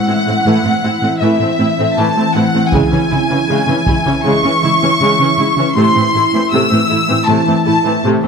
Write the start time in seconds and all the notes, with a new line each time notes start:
Already playing: E3 C4 E4 E5 F#5
0.07 A2 C4 E4
0.26 A2 A3 C4
0.45 A2 E3 A3
0.64 A2 A3 C4
0.82 A2 C4 E4
1.02 A2 A3 C4
1.20 A2 E3 A3 E5
1.40 A2 A3 C4
1.59 A2 C4 E4
1.78 A2 A3 C4
1.96 A2 E3 A3 A5
2.16 A2 A3 C4
2.34 A2 C4 E4 F#5
2.54 A2 A3 C4
2.72 C#3 G#3 C#4 E4 E5 G#5, taiko
2.91 C#3 E3 C#4
3.10 C#3 G#3 E4
3.30 C#3 E3 C#4
3.49 C#3 G#3
3.67 C#3 E3 C#4
3.86 C#3 G#3 E4, taiko
4.05 C#3 E3 C#4
4.24 C#3 G#3 C#6
4.43 C#3 E3 C#4
4.62 C#3 G#3 E4
4.81 C#3 E3 C#4
5.00 C#3 G#3
5.19 C#3 E3 C#4
5.37 C#3 G#3 E4
5.57 C#3 E3 C#4
5.75 A2 C3 E3 A3 C6
5.95 A2 E3 C4
6.13 A2 A3 E4
6.33 A2 E3 C4
6.52 A2 C3 A3 E6
6.71 A2 E3 C4
6.90 A2 A3 E4
7.09 A2 E3 C4
7.27 A2 C3 A3 A5
7.47 A2 E3 C4
7.65 A2 A3 E4 A5
7.84 A2 E3 C4
8.03 A2 C3 A3
8.23 A2 E3 C4